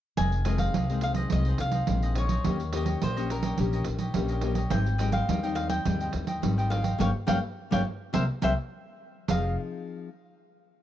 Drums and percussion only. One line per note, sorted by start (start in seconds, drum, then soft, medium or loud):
0.17 pandeiro medium
0.32 pandeiro soft
0.45 pandeiro medium
0.58 pandeiro medium
0.74 pandeiro medium
0.89 pandeiro soft
1.01 pandeiro medium
1.15 pandeiro medium
1.30 pandeiro medium
1.45 pandeiro soft
1.58 pandeiro medium
1.72 pandeiro medium
1.87 pandeiro medium
2.02 pandeiro soft
2.15 pandeiro medium
2.29 pandeiro medium
2.44 pandeiro medium
2.60 pandeiro soft
2.73 pandeiro medium
2.86 pandeiro medium
3.02 pandeiro medium
3.17 pandeiro soft
3.30 pandeiro medium
3.43 pandeiro medium
3.58 pandeiro medium
3.73 pandeiro soft
3.85 pandeiro medium
3.99 pandeiro medium
4.14 pandeiro medium
4.28 pandeiro soft
4.41 pandeiro medium
4.55 pandeiro medium
4.70 pandeiro medium
4.86 pandeiro soft
4.99 pandeiro medium
5.12 pandeiro medium
5.29 pandeiro medium
5.44 pandeiro soft
5.56 pandeiro medium
5.69 pandeiro medium
5.85 pandeiro medium
6.00 pandeiro soft
6.13 pandeiro medium
6.27 pandeiro medium
6.43 pandeiro medium
6.59 pandeiro soft
6.72 pandeiro medium
6.84 pandeiro medium
7.00 pandeiro medium
7.28 pandeiro loud
7.72 pandeiro medium
8.14 pandeiro medium
8.42 pandeiro medium
9.28 pandeiro loud